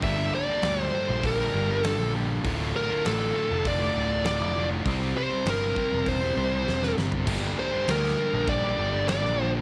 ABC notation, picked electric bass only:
X:1
M:4/4
L:1/16
Q:1/4=100
K:Gdor
V:1 name="Picked electric bass" clef=bass
G,,,2 z2 D,,2 z B,,,3 G,,,3 B,,,3 | D,,,2 z2 A,,,2 z F,,,3 D,,,3 F,,,3 | C,,2 z2 G,,,2 z E,,,3 C,,2 E,,,2 G,,,2 | G,,,2 z2 D,,2 z B,,,3 G,,,3 B,,,3 |]